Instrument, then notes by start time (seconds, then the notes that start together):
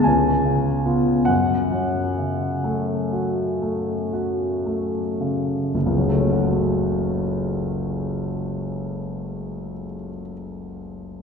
grand piano
0.04 C#2 G#5
0.45 C#3
0.86 B3 F4
1.25 F#2 F#5
1.72 F#3
2.18 C#3
2.64 A3
3.13 F#4
3.62 A3
4.13 F#4
4.66 A3
5.21 C#3
5.74 F#1
5.86 C#2
5.97 F#3
6.09 A3
6.21 C#4
6.32 F#4